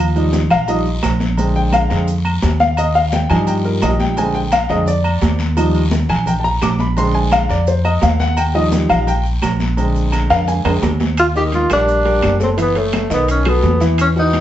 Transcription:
Already playing: upright bass D#2
0.15 grand piano F3 G3 D#4, high conga, low agogo, maracas
0.33 high conga, low timbale, short guiro, maracas
0.50 upright bass A#1, grand piano F5, high conga, low conga, low agogo, short guiro, claves, maracas
0.68 grand piano F3 G3 D#4 D#5, high conga, low agogo, long guiro, maracas
0.86 high conga, maracas
1.03 upright bass A#1, high conga, low timbale, low agogo, short guiro, claves, maracas
1.20 high conga, short guiro, maracas
1.37 grand piano D3 G#3 C4, low agogo, long guiro, maracas
1.55 grand piano G5, high conga, maracas
1.72 grand piano F5, high conga, low timbale, low agogo, short guiro, claves, maracas
1.90 upright bass F2, grand piano D3 G#3 C4, high conga, low agogo, short guiro, maracas
2.07 high conga, long guiro, maracas
2.25 high conga, low agogo, claves, maracas
2.42 upright bass D#2, high conga, low timbale, low agogo, short guiro, maracas
2.60 grand piano F5, high conga, short guiro, maracas
2.77 grand piano D#5, high conga, low agogo, long guiro, claves, maracas
2.95 grand piano F5, high conga, low agogo, maracas
3.12 grand piano G5, high conga, low timbale, short guiro, maracas
3.29 upright bass G2, grand piano F3 G3 D#4 G#5, high conga, low conga, low agogo, short guiro, claves, maracas
3.47 grand piano G5, high conga, low agogo, long guiro, maracas
3.65 grand piano A#4, high conga, maracas
3.82 upright bass A#1, grand piano D#5, high conga, low timbale, low agogo, short guiro, claves, maracas
4.00 grand piano G5, high conga, short guiro, maracas
4.17 grand piano D3 G#3 C4 G#5, low agogo, long guiro, maracas
4.34 grand piano G5, high conga, maracas
4.52 grand piano F5, high conga, low timbale, low agogo, short guiro, claves, maracas
4.69 upright bass F2, grand piano D3 G#3 C4 D#5, high conga, low agogo, short guiro, maracas
4.86 grand piano D5, high conga, long guiro, maracas
5.04 high conga, low agogo, claves, maracas
5.21 upright bass D#2, high conga, low timbale, low agogo, short guiro, maracas
5.39 high conga, short guiro, maracas
5.56 grand piano F3 G3 D#4, high conga, low agogo, long guiro, claves, maracas
5.75 high conga, low agogo, maracas
5.91 high conga, low timbale, short guiro, maracas
6.09 upright bass A#1, grand piano G#5, high conga, low conga, low agogo, short guiro, claves, maracas
6.26 grand piano G5, high conga, low conga, low agogo, long guiro, maracas
6.40 grand piano A5
6.44 grand piano A#5, high conga, maracas
6.62 upright bass A#1, grand piano D6, high conga, low timbale, low agogo, short guiro, claves, maracas
6.79 grand piano B5, high conga, short guiro, maracas
6.97 grand piano D3 G#3 C4 C6, high conga, low agogo, long guiro, maracas
7.14 grand piano G#5, high conga, maracas
7.32 grand piano F5, high conga, low timbale, low agogo, short guiro, claves, maracas
7.49 upright bass F2, grand piano D5, high conga, low agogo, short guiro, maracas
7.67 grand piano C5, high conga, long guiro, maracas
7.85 grand piano D#5, high conga, low agogo, claves, maracas
8.01 upright bass D#2, grand piano F5, high conga, low timbale, low agogo, short guiro, maracas
8.20 grand piano F#5, high conga, short guiro, maracas
8.37 grand piano G5, high conga, low agogo, long guiro, claves, maracas
8.54 grand piano F3 G3 D#4 D#5, high conga, low agogo, maracas
8.72 high conga, low timbale, short guiro, maracas
8.89 upright bass A#1, grand piano F5, high conga, low conga, low agogo, short guiro, claves, maracas
9.07 grand piano G5, high conga, low agogo, long guiro, maracas
9.24 high conga, maracas
9.42 upright bass A#1, high conga, low timbale, low agogo, short guiro, claves, maracas
9.60 high conga, short guiro, maracas
9.77 grand piano D3 G#3 C4, high conga, low agogo, long guiro, maracas
9.95 high conga, maracas
10.12 high conga, low timbale, low agogo, short guiro, claves, maracas
10.30 upright bass F2, grand piano F5, high conga, high timbale, low agogo, short guiro, maracas
10.48 grand piano G#5, high conga, high timbale, long guiro, maracas
10.64 upright bass F2, grand piano D3 G#3 C4, high conga, high timbale, low agogo, claves, maracas
10.82 upright bass D#2, high conga, low timbale, low agogo, short guiro, maracas
11.00 high conga, low timbale, short guiro, maracas
11.17 tenor saxophone F4, high conga, high timbale, long guiro, claves, maracas
11.35 grand piano D#3 D#4 D#5, tenor saxophone G4, high conga, maracas
11.52 tenor saxophone F4, high conga, high timbale, low timbale, short guiro, maracas
11.70 upright bass A#1, grand piano G3 G4 A#4, tenor saxophone D4, high conga, high timbale, short guiro, claves, maracas
11.88 high conga, long guiro, maracas
12.05 grand piano G3 G4 A#4, high conga, high timbale, maracas
12.22 upright bass F#1, high conga, high timbale, low timbale, short guiro, claves, maracas
12.40 grand piano A3 A4 C#5, tenor saxophone C4, high conga, short guiro, maracas
12.57 grand piano E3 E4 E5, high conga, high timbale, long guiro, maracas
12.62 tenor saxophone B3
12.75 grand piano A3 A4 C#5, tenor saxophone A3, high conga, high timbale, maracas
12.93 high conga, high timbale, low timbale, short guiro, claves, maracas
13.10 upright bass B1, grand piano D#3 D#4 D#5, tenor saxophone B3, high conga, short guiro, maracas
13.28 tenor saxophone C#4, high conga, high timbale, long guiro, maracas
13.45 grand piano F#3 F#4 A4, tenor saxophone B3, high conga, high timbale, claves, maracas
13.63 upright bass E2, high conga, low timbale, short guiro, maracas
13.80 grand piano E3 E4 E5, high conga, short guiro, maracas
13.98 tenor saxophone C#4, high conga, high timbale, long guiro, claves, maracas
14.15 grand piano E3 F#4 F#5, tenor saxophone D#4, high conga, maracas
14.33 high conga, high timbale, low timbale, short guiro, maracas

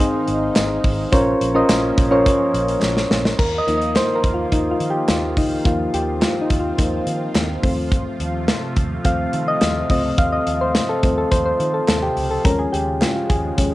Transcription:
Already playing: analog synth pad D#3 G#3 D#4, synth keys C4 D#4 G#4 C5 D#5 F5
0.28 fingered electric bass G#1, closed hi-hat
0.56 fingered electric bass G#1, snare, clap, closed hi-hat, tambourine
0.84 fingered electric bass G#1, kick, open hi-hat
1.12 fingered electric bass A#1, analog synth pad F3 A#3 C#4, synth keys C#4 F4 A#4 C5 C#5, kick, closed hi-hat
1.41 fingered electric bass A#1, closed hi-hat
1.54 synth keys C#4 F4 A#4 C5 D#5
1.69 fingered electric bass A#1, snare, clap, closed hi-hat, tambourine
1.98 fingered electric bass A#1, kick, closed hi-hat
2.11 synth keys C#4 F4 A#4 C5 C#5
2.26 kick, closed hi-hat
2.54 fingered electric bass A#1, closed hi-hat
2.68 closed hi-hat
2.82 fingered electric bass A#1, snare, clap
2.97 snare
3.10 fingered electric bass A#1, snare
3.25 snare
3.39 fingered electric bass D#2, analog synth pad D#3 F3 A#3 F4, synth keys A#4, kick, crash
3.58 synth keys D#5
3.67 fingered electric bass D#2, synth keys F3 A#3 D#4, closed hi-hat
3.77 synth keys D#5
3.82 closed hi-hat
3.96 synth keys C5, snare, clap, closed hi-hat
4.15 synth keys A#4
4.24 fingered electric bass D#2, kick, closed hi-hat
4.34 synth keys F4
4.52 fingered electric bass D#2, synth keys D#4, kick, closed hi-hat
4.71 synth keys F4
4.80 fingered electric bass D#3, closed hi-hat
4.90 synth keys G4
5.08 fingered electric bass D#2, synth keys F4, snare, clap, closed hi-hat
5.37 fingered electric bass C#2, synth keys D#4, kick, open hi-hat
5.65 fingered electric bass D#2, synth keys F3 A#3 D#4 F4, analog synth pad C4, kick, closed hi-hat
5.94 fingered electric bass D#2, synth keys G4, closed hi-hat
6.22 synth keys F4, snare, clap, closed hi-hat
6.41 synth keys D#4
6.50 fingered electric bass D#2, kick, closed hi-hat
6.60 synth keys F4
6.78 fingered electric bass D#2, synth keys F3 A#3 D#4, kick, closed hi-hat
7.06 fingered electric bass D#3, closed hi-hat
7.35 fingered electric bass D#2, snare, clap, closed hi-hat
7.62 fingered electric bass D#2, analog synth pad C3 A3, synth keys F3 A3 C4, kick, open hi-hat
7.92 kick, closed hi-hat
8.20 fingered electric bass D#2, closed hi-hat
8.48 snare, clap, closed hi-hat
8.76 fingered electric bass D#2, kick, closed hi-hat
9.04 fingered electric bass D#2, synth keys F3 A3 C4 F5, kick, closed hi-hat
9.33 fingered electric bass D#3, closed hi-hat
9.48 synth keys D#5
9.61 fingered electric bass D#2, snare, clap, closed hi-hat
9.89 fingered electric bass C#2, synth keys F3 A3 C4 D#5, kick, open hi-hat
10.18 fingered electric bass D#2, synth keys F5, kick, closed hi-hat
10.32 synth keys D#5
10.47 fingered electric bass D#2, closed hi-hat
10.61 synth keys C5
10.75 snare, clap, closed hi-hat
10.89 synth keys A4
11.03 fingered electric bass D#2, synth keys F3 A3 C4, kick, closed hi-hat
11.18 synth keys A4
11.31 fingered electric bass D#2, synth keys C5, kick, closed hi-hat
11.45 synth keys C5
11.60 fingered electric bass D#3, closed hi-hat
11.74 synth keys A4
11.88 fingered electric bass D#2, synth keys A4, snare, clap, closed hi-hat
12.02 synth keys G4
12.16 fingered electric bass C#2, open hi-hat
12.31 synth keys A4
12.44 fingered electric bass D#2, analog synth pad C#3 F3 G#3, synth keys F3 G#3 C#4 A#4, kick, closed hi-hat
12.59 synth keys G#4
12.72 fingered electric bass D#2, synth keys G4, closed hi-hat
13.01 synth keys F4, snare, clap, closed hi-hat
13.15 synth keys F4
13.29 fingered electric bass D#2, synth keys G#4, kick, closed hi-hat
13.57 fingered electric bass D#2, synth keys F3 G#3 C#4, kick, closed hi-hat

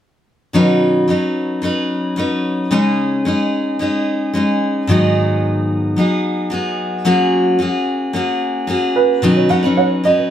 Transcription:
0.53 steel-string acoustic guitar B2 D#3 F#3 C#4 D#4 B4
1.08 steel-string acoustic guitar F#3 C#4 D#4 B4
1.62 steel-string acoustic guitar F#3 C#4 D#4 B4
2.16 steel-string acoustic guitar F#3 C#4 D#4 B4
2.71 steel-string acoustic guitar C#3 G#3 C#4 D#4 G#4
3.25 steel-string acoustic guitar G#3 C#4 D#4 G#4
3.79 steel-string acoustic guitar G#3 C#4 D#4 G#4
4.33 steel-string acoustic guitar G#3 C#4 D#4 G#4
4.87 steel-string acoustic guitar G#2 D#3 F#3 B3
4.92 steel-string acoustic guitar D#4 G#4
5.96 steel-string acoustic guitar F#3 B3 D#4 G#4
6.50 steel-string acoustic guitar F#3 B3 D#4 G#4
7.05 steel-string acoustic guitar F#3 A#3 C#4 F#4 G#4
7.59 steel-string acoustic guitar A#3 C#4 F#4 G#4
8.13 steel-string acoustic guitar A#3 C#4 F#4 G#4
8.67 steel-string acoustic guitar A#3 C#4 F#4 G#4
8.96 upright piano B4
9.22 steel-string acoustic guitar B2 D#3 F#3 C#4 D#4 B4
9.36 nylon-string guitar C#5
9.49 steel-string acoustic guitar F#3 C#4 D#4 B4, upright piano F#5
9.63 steel-string acoustic guitar F#3 C#4 D#4 B4, nylon-string guitar D#5
9.77 nylon-string guitar C#5, upright piano F#5
10.04 steel-string acoustic guitar F#3 C#4 D#4 B4, upright piano D#5
10.18 nylon-string guitar B4

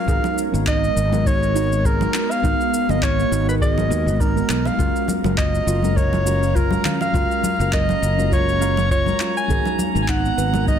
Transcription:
Already playing: ambient pad A#4, soprano saxophone F5
0.06 fretless electric bass G#1, fm electric piano G#3 B3 D#4 F#4 A#4, ambient pad G#3 B3 F#4, synth arpeggio sound G#4, kick, shaker
0.24 low conga, shaker
0.38 shaker
0.52 fretless electric bass G#1, fm electric piano G#3 B3 D#4 F#4 A#4, shaker
0.67 synth arpeggio sound D#4, soprano saxophone D#5, kick, clap, shaker
0.84 shaker
0.96 fretless electric bass G#1, shaker
1.11 fm electric piano G#3 B3 D#4 F#4 A#4, low conga, shaker
1.25 synth arpeggio sound D#4, soprano saxophone C#5, kick, shaker
1.43 shaker
1.53 fm electric piano G#3 B3 D#4 F#4 A#4, synth arpeggio sound D#4, shaker
1.72 shaker
1.84 synth arpeggio sound G#4, soprano saxophone A#4, kick, shaker
1.99 fm electric piano G#3 B3 D#4 F#4 A#4, low conga, shaker
2.14 clap, shaker
2.31 soprano saxophone F5, shaker
2.42 fretless electric bass G#1, fm electric piano G#3 B3 D#4 F#4 A#4, synth arpeggio sound D#4, kick, shaker
2.61 shaker
2.74 shaker
2.88 fretless electric bass G#1, fm electric piano G#3 B3 D#4 F#4 A#4, soprano saxophone D#5, low conga, shaker
3.02 synth arpeggio sound D#4, soprano saxophone C#5, kick, clap, shaker
3.20 shaker
3.31 fretless electric bass G#1, synth arpeggio sound D#4, shaker
3.46 fm electric piano G#3 B3 D#4 F#4 A#4, soprano saxophone B4, shaker
3.61 synth arpeggio sound G#4, soprano saxophone D#5, kick, shaker
3.78 low conga, shaker
3.89 fretless electric bass D#2, fm electric piano G#3 B3 D#4 F#4 A#4, synth arpeggio sound A#4, shaker
4.06 fretless electric bass G#1, shaker
4.20 synth arpeggio sound D#4, soprano saxophone A#4, kick, shaker
4.34 fm electric piano G#3 B3 D#4 F#4 A#4, shaker
4.49 fretless electric bass B1, clap, shaker
4.66 soprano saxophone F5, low conga, shaker
4.77 fretless electric bass F#1, ambient pad F#3 C#4 F5, fm electric piano G#3 C#4 F4 F#4 A#4, synth arpeggio sound F4, synth texture A#5, kick, shaker
4.96 shaker
5.08 synth arpeggio sound F5, high conga, shaker
5.23 fretless electric bass F#1, fm electric piano G#3 C#4 F4 F#4 A#4, low conga, shaker
5.37 synth arpeggio sound F4, soprano saxophone D#5, kick, clap, shaker
5.55 shaker
5.67 fretless electric bass F#1, synth arpeggio sound F4, shaker
5.82 fm electric piano G#3 C#4 F4 F#4 A#4, high conga, shaker
5.96 synth arpeggio sound A#4, soprano saxophone C#5, kick, shaker
6.13 low conga, shaker
6.24 fm electric piano G#3 C#4 F4 F#4 A#4, shaker
6.43 shaker
6.55 synth arpeggio sound F4, soprano saxophone A#4, kick, shaker
6.70 fm electric piano G#3 C#4 F4 F#4 A#4, high conga, shaker
6.85 synth arpeggio sound F5, clap, low conga, shaker
7.01 soprano saxophone F5, low conga, shaker
7.13 fretless electric bass F#1, fm electric piano G#3 C#4 F4 F#4 A#4, synth arpeggio sound F4, kick, shaker
7.31 shaker
7.43 synth arpeggio sound F4, high conga, shaker
7.58 fretless electric bass F#1, fm electric piano G#3 C#4 F4 F#4 A#4, shaker
7.73 synth arpeggio sound A#4, soprano saxophone D#5, kick, clap, shaker
7.89 low conga, shaker
8.02 fretless electric bass F#1, shaker
8.17 fm electric piano G#3 C#4 F4 F#4 A#4, high conga, shaker
8.31 synth arpeggio sound F4, soprano saxophone C#5, kick, shaker
8.49 shaker
8.59 fm electric piano G#3 C#4 F4 F#4 A#4, synth arpeggio sound F5, shaker
8.77 low conga, shaker
8.90 synth arpeggio sound F4, soprano saxophone C#5, kick, shaker
9.05 fm electric piano G#3 C#4 F4 F#4 A#4, high conga, shaker
9.20 synth arpeggio sound F4, clap, shaker
9.37 soprano saxophone G#5, shaker
9.47 fretless electric bass G#1, fm electric piano G#3 B3 D#4 F#4 A#4, ambient pad G#3 B3 F#4 A#4, synth arpeggio sound G#4, kick, shaker
9.66 low conga, shaker
9.79 high conga, shaker
9.93 fretless electric bass G#1, fm electric piano G#3 B3 D#4 F#4 A#4, shaker
10.02 soprano saxophone G#5
10.08 synth arpeggio sound D#4, soprano saxophone F#5, kick, clap, shaker
10.25 shaker
10.38 fretless electric bass G#1, synth arpeggio sound B4, shaker
10.52 fm electric piano G#3 B3 D#4 F#4 A#4, high conga, low conga, shaker
10.67 synth arpeggio sound D#4, soprano saxophone D#5, kick, shaker

